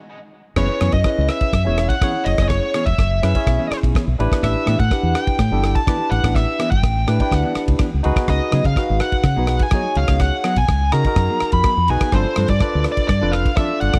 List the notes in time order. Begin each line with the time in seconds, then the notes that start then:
0.56 F#1 E3 B3 C#4 E4 G#4 B4 C#5, kick, cross-stick, crash
0.70 muted clean electric guitar stroke
0.81 F#2 E3 B3 C#4 G#4, cross-stick, ride
0.92 F#2 D#5, muted clean electric guitar stroke, kick, ride
1.04 C#4 E4 G#4 B4, kick, cross-stick, ride
1.18 C#2, muted clean electric guitar stroke
1.28 E5, cross-stick, ride
1.41 muted fingered electric bass stroke, muted clean electric guitar stroke, kick, ride
1.53 F#2, muted clean electric guitar stroke, kick, cross-stick, ride
1.65 E1 E3 B3 C#4 E4 G#4 C#5
1.78 muted clean electric guitar stroke, cross-stick, ride
1.89 F#5, kick, ride
2.02 E3 B3 C#4 E4 G#4 C#5, kick, cross-stick, ride
2.15 muted clean electric guitar stroke
2.25 F#1 D#5, muted clean electric guitar stroke, ride
2.38 F#1 B3 C#4 G#4, kick, cross-stick, ride
2.43 D#5
2.49 C#5, kick, cross-stick, ride
2.64 muted clean electric guitar stroke
2.74 E3 B3 C#4 G#4, cross-stick, ride
2.86 E1 E5, kick, ride
2.98 F#1, kick, cross-stick, ride
3.12 muted clean electric guitar stroke
3.22 F#2 C#4 E4 G#4 B4, cross-stick, ride
3.35 C#4 E4 G#4 C#5, muted clean electric guitar stroke, kick, ride
3.46 B1, muted clean electric guitar stroke, kick, cross-stick, ride
3.59 E3 B3 C#4 G#4
3.71 muted clean electric guitar stroke, muted fingered electric bass stroke, cross-stick, ride
3.83 B1, kick, ride
3.95 E3 B3 C#4 G#4, kick, cross-stick, ride
4.07 B1, muted clean electric guitar stroke
4.18 A1 D4 E4 G4 B4, muted clean electric guitar stroke, ride
4.30 B3 D4 G4, kick, cross-stick, ride
4.43 A1 E5, kick, cross-stick, ride
4.54 muted clean electric guitar stroke
4.66 A2 E3 B3 D4 G4, cross-stick, ride
4.79 A2 F#5, kick, ride
4.91 D4 E4 G4 B4, kick, cross-stick, ride
5.02 E2, muted clean electric guitar stroke
5.15 G5, cross-stick, ride
5.27 muted clean electric guitar stroke, muted fingered electric bass stroke, kick, ride
5.39 A2, muted clean electric guitar stroke, kick, cross-stick, ride
5.51 G1 E3 B3 D4 E4 G4 A4
5.63 cross-stick, ride
5.75 A5, kick, ride
5.87 E3 B3 D4 E4 G4 B4, kick, cross-stick, ride
6.00 muted clean electric guitar stroke
6.11 A1 F#5, muted clean electric guitar stroke, ride
6.24 A1 B3 D4 G4, kick, cross-stick, ride
6.35 E5, kick, cross-stick, ride
6.48 muted clean electric guitar stroke
6.59 E3 B3 D4 G4, cross-stick, ride
6.71 G1 G5, muted clean electric guitar stroke, kick, ride
6.83 A1, kick, cross-stick, ride
6.96 muted clean electric guitar stroke
7.07 A2 D4 E4 G4 B4, cross-stick, ride
7.19 D4 E4 G4 B4, muted clean electric guitar stroke, kick, ride
7.30 D2 F#5, muted clean electric guitar stroke, kick, cross-stick, ride
7.43 E3 B3 D4 G4
7.55 muted clean electric guitar stroke, muted fingered electric bass stroke, cross-stick, ride
7.68 C#2, kick, ride
7.79 E3 B3 D4 G4, kick, cross-stick, ride
7.92 C#2, muted clean electric guitar stroke
8.03 C#2 D#4 F#4 G#4 B4, muted clean electric guitar stroke, ride
8.16 B3 D#4 G#4, kick, cross-stick, ride
8.28 C#2 D#5, kick, cross-stick, ride
8.40 muted clean electric guitar stroke
8.51 C#3 F#3 B3 D#4 G#4, cross-stick, ride
8.64 C#3 F5, kick, ride
8.76 D#4 F#4 G#4 B4, kick, cross-stick, ride
8.89 G#1, muted clean electric guitar stroke
9.00 F#5, cross-stick, ride
9.12 muted fingered electric bass stroke, muted clean electric guitar stroke, kick, ride
9.23 C#3, muted clean electric guitar stroke, kick, cross-stick, ride
9.36 B1 F#3 B3 D#4 F#4 G#4 B4
9.47 cross-stick, ride
9.59 G#5, kick, ride
9.71 F#3 B3 D#4 F#4 G#4 C#5, kick, cross-stick, ride
9.84 muted clean electric guitar stroke
9.95 C#2 F5, muted clean electric guitar stroke, ride
10.08 C#2 B3 D#4 G#4, kick, cross-stick, ride
10.20 F#5, kick, cross-stick, ride
10.32 muted clean electric guitar stroke
10.44 F#3 B3 D#4 G#4, cross-stick, ride
10.56 B1 G#5, muted clean electric guitar stroke, kick, ride
10.68 C#2, kick, cross-stick, ride
10.81 muted clean electric guitar stroke
10.92 C#3 D#4 F#4 G#4 A#4 A#5, cross-stick, ride
11.04 D#4 F#4 G#4 A#4, muted clean electric guitar stroke, kick, ride
11.16 F#2, muted clean electric guitar stroke, kick, cross-stick, ride
11.30 F#3 B3 D#4 G#4
11.40 muted fingered electric bass stroke, cross-stick, ride
11.52 F2 B5, kick, ride
11.64 F#3 B3 D#4 G#4, muted fingered electric bass stroke, kick, cross-stick, ride
11.77 F2
11.88 B1 D#4 F#4 G#4 B4 G#5, muted clean electric guitar stroke, ride
12.01 B3 D#4 G#4, muted fingered electric bass stroke, kick, cross-stick, ride
12.12 G1 F3 C4 D4 F4 A4 C5, kick, cross-stick, ride
12.27 muted clean electric guitar stroke
12.36 G2 F3 C4 D4 A4, cross-stick, ride
12.48 G2 D5, muted clean electric guitar stroke, kick, ride
12.60 D4 F4 A4 B4, muted fingered electric bass stroke, kick, cross-stick, ride
12.75 D2, muted clean electric guitar stroke
12.84 cross-stick, ride
12.92 D5
12.97 muted fingered electric bass stroke, muted clean electric guitar stroke, kick, ride
13.08 G2 D5, muted clean electric guitar stroke, kick, cross-stick, ride
13.21 F1 F3 C4 D4 F4 A4 B4
13.32 F5, cross-stick, ride
13.46 kick, ride
13.57 F3 C4 D4 F4 A4 D5 E5, kick, cross-stick, ride
13.72 muted clean electric guitar stroke
13.81 G1 F#5, muted clean electric guitar stroke, ride
13.93 G1 C4 D4 A4, kick, cross-stick, ride